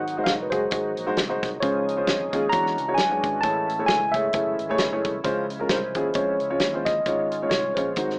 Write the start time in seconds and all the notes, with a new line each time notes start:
Already playing: G#1 G#2 D#3 F#3 G#3 D#4 F#4 F#5
0.07 closed hi-hat
0.17 G#3 D#4 F#4 C5
0.24 F1 F5, kick, snare, closed hi-hat
0.42 B4
0.50 F#1 G#3 D#4 F#4 G#4 C5, kick, closed hi-hat
0.71 G#1 G#3 D#4 F#4 G#4, kick, closed hi-hat
0.97 A#1, closed hi-hat
1.07 G#3 D#4 F#4 C5
1.17 C2, snare, closed hi-hat
1.29 G#3 D#4 F#4 C5
1.43 C2, kick, snare, closed hi-hat
1.60 C#2 C#3 F3 G#3 C#4 F4 G#4 C5 C#5, kick, closed hi-hat
1.89 closed hi-hat
1.97 G#3 C#4 F4 C5
2.07 F2, kick, snare, closed hi-hat
2.33 D#2 G#3 C#4 F4 G#4, kick, closed hi-hat
2.49 E2 E3 G#3 D4 F#4 C#5 A#5, kick, closed hi-hat
2.66 snare
2.78 C#2, closed hi-hat
2.88 G#3 D4 F#4 C#5
2.94 F#2 G#5, snare, closed hi-hat
3.11 G#3 D4 F#4 C#5
3.24 G#1, kick, closed hi-hat
3.41 A1 A2 A3 E4 G#4 C#5 A5, kick, closed hi-hat
3.69 closed hi-hat
3.79 A3 E4 G#4 C#5
3.86 C#2 G#5, kick, snare, closed hi-hat
4.12 A3 E4 G#4 C#5 E5, kick, closed hi-hat
4.33 F#1 A3 E4 G#4 C#5, kick, closed hi-hat
4.59 G#1, closed hi-hat
4.69 A3 E4 G#4 C#5
4.78 F#1, snare, closed hi-hat
4.92 A3 E4 G#4 C#5
5.05 C2, kick, closed hi-hat
5.24 C#2 C#3 F3 G#3 C#4 F4 C5, kick, closed hi-hat
5.50 closed hi-hat
5.59 G#3 C#4 F4 A#4
5.69 C2 C5, kick, snare, closed hi-hat
5.94 D#2 G#3 C#4 F4 G#4, kick, closed hi-hat
6.14 F2 G#3 C#4 F4 C5 C#5, kick, closed hi-hat
6.40 C#2, closed hi-hat
6.50 G#3 C#4 F4 C#5
6.59 D#2, snare, closed hi-hat
6.74 G#3 C#4 F4 C5
6.85 D#5, kick, snare, closed hi-hat
7.06 G#1 G#2 G#3 C#4 F4 C#5, kick, closed hi-hat
7.32 closed hi-hat
7.42 G#3 C#4 F4 C#5
7.49 C2 C#5, kick, snare, closed hi-hat
7.74 A#1 G#3 C#4 F4 C5 C#5, kick, closed hi-hat
7.96 G#1 G#2 D#3 F#3 G#3 C4 D#4 F#4 C5, kick, closed hi-hat
8.10 snare